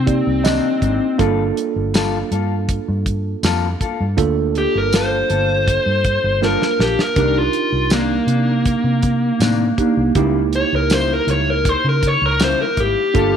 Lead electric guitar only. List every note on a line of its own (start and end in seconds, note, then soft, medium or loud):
0.00 1.17 C4 medium
4.58 4.75 G4 medium
4.78 4.94 A#4 medium
4.96 6.40 C5 medium
6.45 6.80 A#4 medium
6.83 7.00 G4 medium
7.01 7.36 A#4 medium
7.38 7.91 F4 medium
7.93 10.13 A#3 medium
10.56 10.73 C#5 medium
10.76 10.93 A#4 medium
10.93 11.13 C5 medium
11.13 11.29 A#4 medium
11.31 11.50 C#5 medium
11.50 11.69 A#4 medium
11.69 11.86 C5 medium
11.89 12.07 A#4 medium
12.07 12.26 C#5 medium
12.26 12.42 A#4 medium
12.44 12.61 C5 medium
12.62 12.78 A#4 medium
12.80 13.37 G4 medium